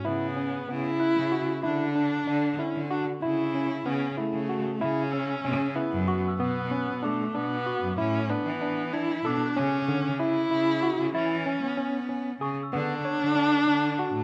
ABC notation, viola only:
X:1
M:5/8
L:1/8
Q:1/4=95
K:Bdor
V:1 name="Viola"
B,2 E3 | D3 C D | E2 C A,2 | C3 B,2 |
B,2 A, B,2 | C B,2 E D | C2 E3 | C4 z |
D4- D |]